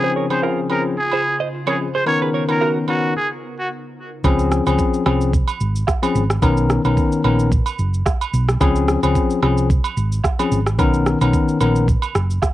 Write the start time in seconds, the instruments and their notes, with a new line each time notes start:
Already playing: ambient pad C#3 F4 C5, tine electric piano F3 C4 C#4 G#4, trumpet G#4
0.04 clean electric guitar G#4 C5
0.16 clean electric guitar A#4 C#5
0.30 tine electric piano F3 C4 C#4 G#4, trumpet C5, high agogo
0.42 clean electric guitar F4 A#4, low woodblock
0.69 tine electric piano F3 C4 C#4 G#4, trumpet A#4, high agogo
0.98 trumpet G#4
1.11 clean electric guitar G#4 C5, high agogo
1.40 clean electric guitar C5 D#5
1.67 tine electric piano F3 C4 C#4 G#4, trumpet G#4, clean electric guitar A#4 C#5, high agogo
1.95 clean electric guitar G#4 C5, trumpet C5
2.06 tine electric piano D#3 B3 C#4 A#4, ambient pad B3 D#4 A#4, trumpet C#5, high agogo
2.22 clean electric guitar G#4 B4
2.34 clean electric guitar A#4 C#5
2.48 tine electric piano D#3 B3 C#4 A#4, trumpet A#4, high agogo
2.61 clean electric guitar F#4 A#4, low woodblock
2.88 tine electric piano D#3 B3 C#4 A#4, trumpet F#4, high agogo
3.17 trumpet G#4
3.59 trumpet F#4
4.24 fingered electric bass C#2, tine electric piano F3 C4 C#4 G#4, kick, high agogo, shaker
4.39 shaker
4.52 cross-stick, shaker
4.66 fingered electric bass C#2, tine electric piano F3 C4 C#4 G#4, high agogo, shaker
4.79 kick, shaker
4.94 shaker
5.06 fingered electric bass C2, tine electric piano F3 C4 C#4 G#4, cross-stick, high agogo
5.21 shaker
5.34 kick, shaker
5.48 high agogo, shaker
5.61 fingered electric bass G#1, shaker
5.76 shaker
5.87 kick, cross-stick, low woodblock, shaker
6.03 tine electric piano F3 C4 C#4 G#4, high agogo, shaker
6.15 fingered electric bass G#1, shaker
6.30 cross-stick, shaker
6.42 fingered electric bass B1, tine electric piano D#3 B3 C#4 A#4, kick, high agogo, shaker
6.57 shaker
6.70 cross-stick, shaker
6.85 fingered electric bass B1, tine electric piano D#3 B3 C#4 A#4, high agogo, shaker
6.97 kick, shaker
7.12 shaker
7.24 fingered electric bass A#1, tine electric piano D#3 B3 C#4 A#4, high agogo
7.39 shaker
7.52 kick, shaker
7.66 high agogo, shaker
7.79 fingered electric bass F#1, shaker
7.94 shaker
8.06 kick, cross-stick, low woodblock, shaker
8.21 high agogo, shaker
8.33 fingered electric bass B1, shaker
8.48 cross-stick, shaker
8.60 fingered electric bass C#2, tine electric piano F3 C4 C#4 G#4, kick, high agogo, shaker
8.75 shaker
8.88 cross-stick, shaker
9.03 fingered electric bass C#2, tine electric piano F3 C4 C#4 G#4, high agogo, shaker
9.15 kick, shaker
9.30 shaker
9.42 fingered electric bass C2, tine electric piano F3 C4 C#4 G#4, cross-stick, high agogo
9.57 shaker
9.70 kick, shaker
9.84 high agogo, shaker
9.97 fingered electric bass G#1, shaker
10.12 shaker
10.24 kick, cross-stick, low woodblock, shaker
10.39 tine electric piano F3 C4 C#4 G#4, high agogo, shaker
10.52 fingered electric bass G#1, shaker
10.67 cross-stick, shaker
10.79 fingered electric bass B1, tine electric piano D#3 B3 C#4 A#4, kick, high agogo, shaker
10.94 shaker
11.06 cross-stick, shaker
11.21 fingered electric bass B1, tine electric piano D#3 B3 C#4 A#4, high agogo, shaker
11.33 kick, shaker
11.48 shaker
11.61 fingered electric bass A#1, tine electric piano D#3 B3 C#4 A#4, high agogo, shaker
11.76 shaker
11.88 kick, shaker
12.02 high agogo, shaker
12.15 fingered electric bass F#1, cross-stick, shaker
12.30 shaker
12.42 kick, cross-stick, low woodblock, shaker